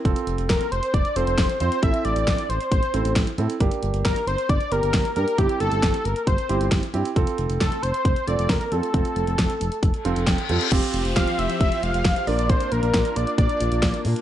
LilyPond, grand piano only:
\new Staff \with { instrumentName = "Grand piano" } { \time 4/4 \key f \major \tempo 4 = 135 <c' f' a'>4. r4 <c' f' a'>8 r8 <c' f' c''>8 | <c' e' a'>4. r4 <c' e' a'>8 r8 <c' e' a'>8 | <bes d' g'>4. r4 <bes d' g'>8 r8 <bes d' g'>8 | <c' e' g'>4. r4 <c' e' g'>8 r8 <c' e' g'>8 |
<c' f' a'>4. r4 <c' f' a'>8 r8 <c' f' a'>8 | <c' f' a'>4. r4 <c' f' a' f''>8 g''8 <c' f' a' a''>8 | <c' f' g'>8 r8 <c' f' g'>4. r4 <d' f' bes'>8~ | <d' f' bes'>8 r8 <d' f' bes'>4. r4. | }